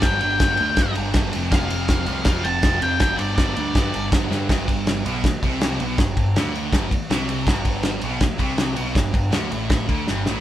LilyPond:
<<
  \new Staff \with { instrumentName = "Lead electric guitar" } { \time 4/4 \key g \mixolydian \tempo 4 = 162 g''8 g''2 r4. | f''2 f''8 a''4 g''8 | g''16. b'32 d''8 d''8 d''4. r4 | r1 |
r1 | r1 | r1 | }
  \new Staff \with { instrumentName = "Distorted electric guitar" } { \clef bass \time 4/4 \key g \mixolydian <g, d g>8 <g, d g>8 <g, d g>8 <g, d g>8 <g, d g>8 <g, d g>8 <g, d g>8 <f, c f>8 | <f, c f>8 <f, c f>8 <f, c f>8 <f, c f>8 <f, c f>8 <f, c f>8 <f, c f>8 <f, c f>8 | <g, d g>8 <g, d g>8 <g, d g>8 <g, d g>8 <g, d g>8 <g, d g>8 <g, d g>8 <g, d g>8 | g,4. b,8 r8 c4 b,8 |
g,8 g,8 d4 g,8 r8 c4 | g,4. b,8 r8 c4 b,8 | g,8 g,8 d8 a,4 d8 g,8 a,8 | }
  \new Staff \with { instrumentName = "Picked electric bass" } { \clef bass \time 4/4 \key g \mixolydian g,,8 g,,8 g,,8 d,8 g,8 g,,8 g,,8 f,,8 | f,,8 f,,8 f,,8 c,8 f,8 f,,8 f,,8 f,8 | g,,8 g,,8 g,,8 d,8 g,8 g,,8 g,,8 g,8 | g,,4. b,,8 r8 c,4 b,,8 |
g,,8 g,,8 d,4 g,,8 r8 c,4 | g,,4. b,,8 r8 c,4 b,,8 | g,,8 g,,8 d,8 a,,4 d,8 g,,8 a,,8 | }
  \new DrumStaff \with { instrumentName = "Drums" } \drummode { \time 4/4 <bd cymr sn>8 cymr8 <bd cymr sn>8 cymr8 <bd cymr sn>8 cymr8 <bd cymr sn>8 cymr8 | <bd cymr sn>8 cymr8 <bd cymr sn>8 cymr8 <bd cymr sn>8 cymr8 <bd cymr sn>8 cymr8 | <bd cymr sn>8 cymr8 <bd cymr sn>8 cymr8 <bd cymr sn>8 cymr8 <bd cymr sn>8 sn8 | <bd cymr sn>8 <bd cymr>8 <cymr sn>8 cymr8 <bd cymr sn>8 <bd cymr>8 <cymr sn>8 cymr8 |
<bd cymr sn>8 <bd cymr>8 <cymr sn>8 cymr8 <bd cymr sn>8 <bd cymr>8 <cymr sn>8 cymr8 | <bd cymr sn>8 <bd cymr>8 <cymr sn>8 cymr8 <bd cymr sn>8 <bd cymr>8 <cymr sn>8 cymr8 | <bd cymr sn>8 <bd cymr>8 <cymr sn>8 cymr8 <bd cymr sn>8 <bd cymr>8 sn8 sn8 | }
>>